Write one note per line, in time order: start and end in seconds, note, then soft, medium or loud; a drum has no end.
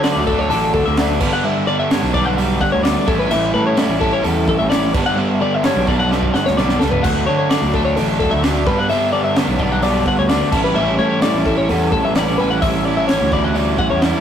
0.00 0.14 D3 medium
0.00 1.45 D3 medium
0.00 0.49 D3 medium
0.00 0.27 D5 medium
0.00 snare loud
0.00 open hi-hat medium
0.05 0.29 F#3 medium
0.05 0.28 A3 medium
0.05 0.28 D4 loud
0.16 0.48 D2 medium
0.27 0.50 F#3 medium
0.27 0.51 A3 medium
0.27 0.52 D4 medium
0.27 0.39 A4 medium
0.27 kick medium
0.39 0.50 C#5 medium
0.50 0.73 A1 loud
0.50 0.96 D3 medium
0.50 0.97 F#3 loud
0.50 0.98 A3 loud
0.50 0.99 D4 loud
0.50 0.73 A4 medium
0.50 open hi-hat medium
0.73 0.85 D2 loud
0.73 0.86 A4 medium
0.73 kick medium
0.86 1.18 D2 loud
0.86 0.98 E5 medium
0.97 1.20 D3 medium
0.97 1.20 F#3 medium
0.97 1.20 A3 medium
0.97 1.20 D4 medium
0.97 1.20 D5 medium
0.97 snare loud
0.97 open hi-hat medium
1.20 1.99 G1 medium
1.20 1.43 G2 medium
1.20 1.44 D3 medium
1.20 1.45 G3 medium
1.20 1.44 B3 medium
1.20 1.46 D4 medium
1.20 1.32 B4 medium
1.20 kick loud
1.20 crash loud
1.33 1.44 F#5 medium
1.44 1.91 G2 medium
1.44 1.91 D3 loud
1.44 1.70 G3 medium
1.44 1.68 B3 loud
1.44 1.68 D4 loud
1.44 1.67 E5 loud
1.67 1.92 G3 medium
1.67 1.92 B3 medium
1.67 1.94 D4 medium
1.67 1.79 D5 medium
1.79 1.91 E5 medium
1.91 2.38 D3 medium
1.91 2.17 G3 medium
1.91 2.15 B3 medium
1.91 2.14 D4 medium
1.91 2.14 C#5 medium
1.91 snare loud
1.91 open hi-hat medium
2.03 2.57 B1 loud
2.14 2.39 G3 medium
2.14 2.39 B3 medium
2.14 2.40 D4 medium
2.14 2.26 D5 medium
2.14 kick medium
2.26 2.37 F#5 medium
2.37 3.06 G2 loud
2.37 2.83 D3 medium
2.37 2.85 G3 loud
2.37 2.85 B3 loud
2.37 2.86 D4 loud
2.37 2.61 D5 loud
2.37 open hi-hat medium
2.60 2.72 G1 loud
2.60 2.72 F#5 medium
2.60 kick medium
2.72 2.95 D2 medium
2.72 2.83 C#5 medium
2.83 3.06 D3 medium
2.83 3.07 G3 medium
2.83 3.07 B3 medium
2.83 3.06 D4 medium
2.83 3.07 D5 medium
2.83 snare loud
2.83 open hi-hat medium
3.07 3.29 A1 loud
3.07 3.29 A2 medium
3.07 3.30 E3 medium
3.07 3.31 G3 medium
3.07 3.31 C#4 medium
3.07 3.31 E4 loud
3.07 3.19 A4 medium
3.07 kick loud
3.19 3.31 B4 medium
3.30 3.53 A1 loud
3.30 3.78 A2 medium
3.30 3.75 E3 loud
3.30 3.56 G3 loud
3.30 3.53 C#4 loud
3.30 3.52 E4 loud
3.30 3.53 E5 loud
3.30 crash loud
3.53 3.87 A2 loud
3.53 3.76 G3 medium
3.53 3.76 C#4 medium
3.53 3.77 E4 medium
3.53 3.66 B4 medium
3.67 3.77 C#5 medium
3.76 4.21 E3 medium
3.76 4.01 G3 loud
3.76 4.00 C#4 medium
3.76 3.98 E4 loud
3.76 4.01 D5 medium
3.76 snare loud
3.76 open hi-hat medium
3.89 4.22 A1 medium
4.00 4.22 G3 medium
4.00 4.22 C#4 medium
4.00 4.23 E4 medium
4.00 4.13 A4 medium
4.00 kick medium
4.13 4.24 C#5 medium
4.21 4.47 E2 loud
4.21 4.92 A2 loud
4.21 4.68 E3 medium
4.21 4.69 G3 loud
4.21 4.70 C#4 loud
4.21 4.71 E4 loud
4.21 4.48 A4 medium
4.21 open hi-hat medium
4.48 4.59 A1 loud
4.48 4.59 A4 medium
4.48 kick medium
4.59 4.92 A1 loud
4.59 4.69 E5 medium
4.69 4.92 E3 medium
4.69 4.93 G3 medium
4.69 4.93 C#4 medium
4.69 4.93 E4 medium
4.69 4.94 D5 medium
4.69 snare loud
4.69 open hi-hat medium
4.94 5.72 G1 medium
4.94 5.15 G2 medium
4.94 5.15 D3 medium
4.94 5.16 G3 medium
4.94 5.16 B3 loud
4.94 5.19 D4 medium
4.94 5.06 B4 medium
4.94 kick loud
4.94 crash loud
5.06 5.18 F#5 medium
5.16 5.64 G2 medium
5.16 5.62 D3 medium
5.16 5.41 G3 loud
5.16 5.40 B3 loud
5.16 5.40 D4 loud
5.16 5.41 E5 loud
5.40 5.64 G3 medium
5.40 5.65 B3 medium
5.40 5.66 D4 medium
5.40 5.54 D5 medium
5.54 5.65 E5 medium
5.63 6.10 D3 medium
5.63 5.89 G3 medium
5.63 5.88 B3 medium
5.63 5.87 D4 loud
5.63 5.88 C#5 medium
5.63 snare loud
5.63 open hi-hat medium
5.76 6.30 B1 medium
5.87 6.11 G3 medium
5.87 6.11 B3 medium
5.87 6.12 D4 medium
5.87 5.99 D5 medium
5.87 kick medium
5.99 6.11 F#5 medium
6.10 6.81 G2 medium
6.10 6.56 D3 medium
6.10 6.57 G3 medium
6.10 6.57 B3 loud
6.10 6.59 D4 loud
6.10 6.34 D5 medium
6.10 snare medium
6.23 kick medium
6.34 6.46 G1 loud
6.34 6.46 F#5 medium
6.34 snare medium
6.46 6.57 D2 medium
6.46 6.58 C#5 medium
6.46 snare medium
6.57 6.79 B1 medium
6.57 7.03 D3 medium
6.57 6.82 G3 medium
6.57 6.81 B3 medium
6.57 6.81 D4 medium
6.57 6.81 D5 medium
6.57 snare medium
6.69 snare medium
6.79 7.02 C#2 medium
6.79 7.04 G3 medium
6.79 7.03 B3 medium
6.79 7.06 D4 medium
6.79 6.91 A4 medium
6.79 snare loud
6.91 7.04 B4 medium
6.91 floor tom medium
7.03 7.26 D2 loud
7.03 7.49 D3 medium
7.03 7.29 F#3 medium
7.03 7.27 A3 loud
7.03 7.26 D4 loud
7.03 7.26 F#5 medium
7.03 kick loud
7.03 crash loud
7.03 splash medium
7.26 7.60 D3 medium
7.26 7.50 F#3 medium
7.26 7.51 A3 medium
7.26 7.51 D4 medium
7.26 7.37 C#5 medium
7.38 7.50 C#5 medium
7.50 7.96 D3 medium
7.50 7.75 F#3 medium
7.50 7.74 A3 medium
7.50 7.73 D4 medium
7.50 7.74 D5 medium
7.50 snare loud
7.50 open hi-hat medium
7.62 7.94 D2 medium
7.74 7.97 F#3 medium
7.74 7.98 A3 medium
7.74 7.99 D4 medium
7.74 7.84 A4 medium
7.74 kick medium
7.85 7.96 C#5 medium
7.96 8.19 A1 medium
7.96 8.42 D3 medium
7.96 8.43 F#3 medium
7.96 8.44 A3 loud
7.96 8.44 D4 loud
7.96 8.18 A4 medium
7.96 open hi-hat medium
8.20 8.32 D2 loud
8.20 8.32 A4 medium
8.20 kick medium
8.31 8.64 D2 loud
8.31 8.43 E5 medium
8.43 8.65 D3 medium
8.43 8.66 F#3 medium
8.43 8.66 A3 medium
8.43 8.65 D4 medium
8.43 8.67 D5 medium
8.43 snare loud
8.43 open hi-hat medium
8.65 9.44 G1 medium
8.65 8.87 G2 medium
8.65 8.88 D3 medium
8.65 8.90 G3 medium
8.65 8.90 B3 medium
8.65 8.91 D4 loud
8.65 8.79 B4 medium
8.65 kick loud
8.79 8.89 F#5 medium
8.89 9.36 G2 loud
8.89 9.34 D3 loud
8.89 9.14 G3 loud
8.89 9.12 B3 loud
8.89 9.11 D4 loud
8.89 9.12 E5 medium
8.89 open hi-hat medium
9.12 9.36 G3 medium
9.12 9.37 B3 medium
9.12 9.38 D4 medium
9.12 9.24 D5 medium
9.24 9.37 E5 medium
9.35 9.81 D3 medium
9.35 9.61 G3 medium
9.35 9.58 B3 medium
9.35 9.58 D4 medium
9.35 9.60 C#5 medium
9.35 snare loud
9.35 open hi-hat medium
9.48 10.03 B1 medium
9.59 9.83 G3 medium
9.59 9.82 B3 medium
9.59 9.84 D4 medium
9.59 9.72 D5 medium
9.59 kick medium
9.72 9.83 F#5 medium
9.81 10.51 G2 medium
9.81 10.27 D3 loud
9.81 10.29 G3 loud
9.81 10.29 B3 loud
9.81 10.30 D4 loud
9.81 10.06 D5 medium
9.81 open hi-hat medium
10.06 10.17 G1 loud
10.06 10.18 F#5 medium
10.06 kick medium
10.18 10.39 D2 medium
10.18 10.29 C#5 medium
10.29 10.51 D3 medium
10.29 10.52 G3 medium
10.29 10.52 B3 medium
10.29 10.51 D4 medium
10.29 10.53 D5 medium
10.29 snare loud
10.29 open hi-hat medium
10.52 10.74 A1 loud
10.52 10.76 A2 medium
10.52 10.76 E3 medium
10.52 10.77 G3 medium
10.52 10.77 C#4 medium
10.52 10.78 E4 loud
10.52 10.64 A4 medium
10.52 kick loud
10.52 crash loud
10.64 10.76 B4 medium
10.75 10.98 A1 medium
10.75 11.27 A2 medium
10.75 11.22 E3 loud
10.75 11.01 G3 loud
10.75 11.00 C#4 loud
10.75 11.00 E4 loud
10.75 10.98 E5 medium
10.98 11.31 A2 medium
10.98 11.23 G3 medium
10.98 11.24 C#4 medium
10.98 11.25 E4 medium
10.98 11.09 C#5 medium
11.10 11.22 C#5 medium
11.22 11.70 E3 medium
11.22 11.48 G3 medium
11.22 11.46 C#4 medium
11.22 11.46 E4 medium
11.22 11.46 D5 medium
11.22 snare loud
11.22 open hi-hat medium
11.34 11.66 A1 medium
11.46 11.70 G3 medium
11.46 11.70 C#4 medium
11.46 11.70 E4 medium
11.46 11.57 A4 medium
11.46 kick medium
11.58 11.70 C#5 medium
11.69 11.91 E2 loud
11.69 12.39 A2 loud
11.69 12.14 E3 medium
11.69 12.16 G3 medium
11.69 12.16 C#4 loud
11.69 12.16 E4 loud
11.69 11.91 A4 medium
11.69 open hi-hat medium
11.92 12.03 A1 loud
11.92 12.04 A4 medium
11.92 kick medium
12.05 12.37 A1 loud
12.05 12.16 E5 medium
12.15 12.61 E3 medium
12.15 12.41 G3 medium
12.15 12.38 C#4 medium
12.15 12.37 E4 medium
12.15 12.39 D5 medium
12.15 snare loud
12.15 open hi-hat medium
12.38 13.17 A1 medium
12.38 12.62 G3 medium
12.38 12.62 C#4 medium
12.38 12.63 E4 medium
12.38 12.50 B4 medium
12.50 12.62 F#5 medium
12.62 13.08 A2 medium
12.62 13.08 E3 loud
12.62 12.87 G3 loud
12.62 12.86 C#4 loud
12.62 12.85 E4 loud
12.62 12.85 E5 medium
12.62 kick loud
12.62 open hi-hat medium
12.85 13.09 G3 medium
12.85 13.10 C#4 medium
12.85 13.11 E4 medium
12.85 12.97 D5 medium
12.97 13.07 E5 medium
13.08 13.54 E3 medium
13.08 13.34 G3 medium
13.08 13.33 C#4 medium
13.08 13.31 C#5 medium
13.08 snare loud
13.08 open hi-hat medium
13.12 13.31 E4 medium
13.21 13.75 D2 medium
13.32 13.54 G3 medium
13.32 13.55 C#4 medium
13.32 13.56 E4 medium
13.32 13.44 D5 medium
13.32 kick medium
13.44 13.55 F#5 medium
13.55 14.20 A2 medium
13.55 14.00 E3 medium
13.55 14.01 G3 loud
13.55 14.02 C#4 medium
13.55 14.02 E4 loud
13.55 13.78 D5 medium
13.55 open hi-hat medium
13.79 13.89 A1 loud
13.79 13.90 F#5 medium
13.79 kick medium
13.90 14.12 E2 medium
13.90 14.02 C#5 medium
14.01 14.20 E3 medium
14.01 14.20 G3 medium
14.01 14.20 C#4 medium
14.01 14.20 E4 medium
14.01 14.20 D5 medium
14.01 snare loud
14.01 open hi-hat medium